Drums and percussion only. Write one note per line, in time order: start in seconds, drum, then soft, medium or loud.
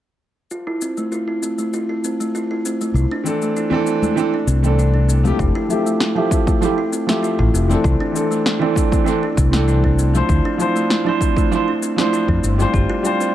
0.51 cabasa soft
0.81 cabasa medium
0.97 cabasa soft
1.12 cabasa soft
1.43 cabasa medium
1.58 cabasa soft
1.73 cabasa soft
2.04 cabasa medium
2.21 cabasa soft
2.35 cabasa soft
2.65 cabasa medium
2.81 cabasa soft
2.96 cabasa soft
3.26 cabasa medium
3.42 cabasa soft
3.56 cabasa soft
3.71 high conga medium
3.87 cabasa medium
4.02 low conga medium
4.02 cabasa soft
4.17 cabasa soft
4.48 high conga medium
4.48 cabasa medium
4.64 cabasa soft
4.79 cabasa soft
5.09 cabasa medium
5.24 high conga medium
5.24 low conga medium
5.24 cabasa soft
5.39 kick loud
5.39 cabasa soft
5.70 cabasa medium
5.87 cabasa soft
6.00 snare medium
6.00 cabasa soft
6.31 kick loud
6.31 cabasa medium
6.47 kick loud
6.47 cabasa soft
6.63 cabasa soft
6.93 cabasa medium
7.09 snare medium
7.09 cabasa soft
7.24 cabasa soft
7.39 kick medium
7.55 cabasa medium
7.71 cabasa soft
7.84 kick loud
7.84 cabasa soft
8.16 cabasa medium
8.32 cabasa soft
8.46 snare medium
8.46 cabasa soft
8.76 kick loud
8.76 cabasa medium
8.92 kick loud
8.92 cabasa soft
9.07 cabasa soft
9.37 kick loud
9.37 cabasa medium
9.53 snare medium
9.53 cabasa soft
9.68 cabasa soft
9.84 kick medium
9.99 cabasa medium
10.15 cabasa soft
10.29 kick loud
10.29 cabasa soft
10.60 cabasa medium
10.76 cabasa soft
10.90 snare medium
10.90 cabasa soft
11.21 kick loud
11.21 cabasa medium
11.37 kick loud
11.37 cabasa soft
11.53 cabasa soft
11.83 cabasa medium
11.98 snare medium
11.98 cabasa soft
12.14 cabasa soft
12.28 kick medium
12.44 cabasa medium
12.60 cabasa soft
12.74 kick loud
12.74 cabasa soft
13.05 cabasa medium
13.21 cabasa soft